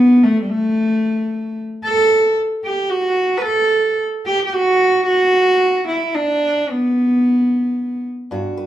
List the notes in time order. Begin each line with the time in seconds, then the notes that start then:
Already playing: B3
0.23 A3
0.42 G3
0.49 A3
1.83 A4
2.65 G4
2.90 F#4
3.37 B4
3.42 A4
4.26 G4
4.44 G4
4.52 F#4
5.06 F#4
5.88 E4
6.15 D4
6.70 B3
8.31 G2 F#4
8.57 B4